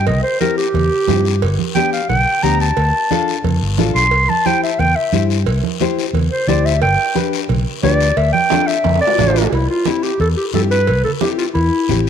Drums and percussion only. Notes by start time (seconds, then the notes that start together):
0.07 cowbell, low conga, long guiro
0.41 high conga, short guiro
0.58 short guiro
0.74 cowbell, low conga, long guiro
1.08 high conga, low conga, low timbale, short guiro
1.25 short guiro
1.42 cowbell, long guiro
1.59 high conga
1.75 high conga, short guiro
1.93 short guiro
2.09 cowbell, low conga, long guiro
2.43 high conga, short guiro
2.60 short guiro
2.77 cowbell, long guiro
3.11 high conga, short guiro
3.28 short guiro
3.44 cowbell, low conga, long guiro
3.78 high conga, low timbale, short guiro
3.96 short guiro
4.11 cowbell, long guiro
4.29 high conga
4.46 high conga, short guiro
4.64 short guiro
4.79 cowbell, low conga, long guiro
5.13 high conga, short guiro
5.30 short guiro
5.46 cowbell, long guiro
5.63 high conga
5.80 high conga, short guiro
5.99 short guiro
6.14 cowbell, low conga, long guiro
6.48 high conga, short guiro
6.66 short guiro
6.82 cowbell, long guiro
7.16 high conga, short guiro
7.33 short guiro
7.49 cowbell, low conga, long guiro
7.83 high conga, low timbale, short guiro
8.00 short guiro
8.17 cowbell, long guiro
8.34 high conga
8.50 high conga, high timbale, short guiro
8.68 short guiro
8.84 cowbell, low conga, high timbale, long guiro
8.95 high timbale
9.07 low timbale
9.18 high conga, low conga, low timbale, short guiro
9.30 low timbale
9.36 short guiro
9.42 low timbale
9.53 cowbell, long guiro
9.69 high conga
9.85 high conga, short guiro
10.03 short guiro
10.20 cowbell, high conga, long guiro
10.54 high conga, low timbale, short guiro
10.71 short guiro
10.87 cowbell, long guiro
11.05 high conga, low conga
11.21 high conga, short guiro
11.39 short guiro
11.55 cowbell, long guiro
11.89 high conga, low conga, short guiro